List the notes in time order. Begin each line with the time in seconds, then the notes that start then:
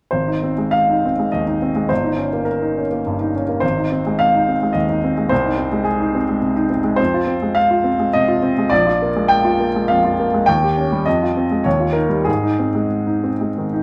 0.11 G#1 C5
0.27 D#4
0.43 C4
0.58 G#3
0.71 F5
0.90 D#4
1.05 C4
1.19 G#3
1.32 D#2 D#5
1.47 D#4
1.62 C4
1.76 G#3
1.89 G1 C5
2.04 D#4
2.18 C#4
2.33 A#3
2.45 A#4
2.62 D#4
2.78 C#4
2.92 A#3
3.07 G2
3.20 D#4
3.36 C#4
3.49 A#3
3.60 G#1 C5
3.77 D#4
3.92 C4
4.07 G#3
4.19 F5
4.34 D#4
4.48 C4
4.63 G#3
4.73 D#2 D#5
4.89 D#4
5.04 C4
5.18 G#3
5.29 C2 C5
5.46 D#4
5.58 C4
5.72 G#3
5.84 G#4
6.00 D#4
6.15 C4
6.29 G#3
6.42 C3
6.56 D#4
6.70 C4
6.84 G#3
6.96 F2 C5
7.14 F4
7.27 C4
7.42 G#3
7.55 F5
7.71 F4
7.84 C4
8.00 G#3
8.13 C3 D#5
8.28 F4
8.43 C4
8.58 G#3
8.70 A#1 D5
8.87 F4
9.02 A#3
9.16 G#3
9.28 G5
9.45 F4
9.60 A#3
9.76 G#3
9.88 F2 F5
10.04 F4
10.20 A#3
10.34 G#3
10.46 D#2 G5
10.64 G4
10.78 C#4
10.92 G3
11.06 F2 D#5
11.23 F4
11.37 C4
11.51 G#3
11.64 D#2 C#5
11.80 F4
11.93 D#4 A#4
12.09 G3
12.24 G#2 G#4
12.43 D#4
12.59 C4
12.75 G#3
13.07 D#4
13.24 C4
13.41 G#3
13.58 D#3
13.74 D#4